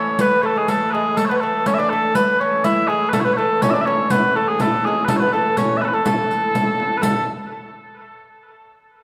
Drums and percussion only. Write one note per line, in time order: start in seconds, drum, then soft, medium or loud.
0.19 riq medium
0.68 riq medium
1.17 riq medium
1.66 riq medium
2.15 riq medium
2.64 riq medium
3.13 riq medium
3.13 frame drum medium
3.62 riq medium
3.62 frame drum loud
3.87 frame drum medium
4.10 riq medium
4.10 frame drum medium
4.59 riq medium
4.59 frame drum medium
4.84 frame drum medium
5.08 riq medium
5.08 frame drum loud
5.57 riq medium
5.57 frame drum medium
5.82 frame drum medium
6.06 riq medium
6.06 frame drum medium
6.31 riq soft
6.55 riq medium
6.55 frame drum medium
6.80 frame drum medium
7.03 riq medium
7.03 frame drum medium